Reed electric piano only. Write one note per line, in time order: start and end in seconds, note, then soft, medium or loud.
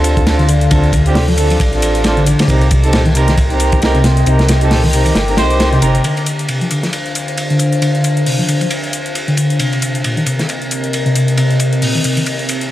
0.39 0.48 D3 loud
0.49 0.70 D3 medium
0.71 1.15 D3 medium
1.16 1.28 C3 medium
1.28 1.32 F3 loud
1.38 1.49 D3 medium
1.51 1.55 F3 medium
2.17 2.25 D3 loud
2.27 2.48 D3 medium
2.49 2.92 C3 medium
2.93 3.05 A#2 medium
3.06 3.10 D#3 loud
3.15 3.27 C3 medium
3.28 3.32 D#3 medium
3.95 4.03 C3 loud
4.04 4.26 C3 medium
4.27 4.70 C3 medium
4.71 4.83 A#2 medium
4.84 4.88 D#3 loud
4.93 5.05 C3 medium
5.06 5.10 D#3 medium
5.72 5.81 C3 loud
5.82 6.03 C3 medium
6.04 6.48 D3 medium
6.49 6.61 C3 medium
6.62 6.66 F3 medium
6.71 6.82 D3 medium
6.84 6.88 F3 medium
7.50 7.59 D3 medium
7.60 7.81 D3 medium
7.82 8.25 D3 medium
8.27 8.39 C3 medium
8.39 8.43 F3 medium
8.49 8.60 D3 medium
8.61 8.66 F3 medium
9.28 9.36 D3 medium
9.38 9.59 D3 medium
9.60 10.03 C3 medium
10.04 10.16 A#2 medium
10.17 10.21 D#3 loud
10.27 10.38 C3 medium
10.39 10.44 D#3 medium
11.06 11.15 C3 medium
11.16 11.37 C3 medium
11.38 11.81 C3 medium
11.82 11.94 A#2 medium
11.95 11.99 D#3 medium
12.04 12.16 C3 medium
12.17 12.21 D#3 medium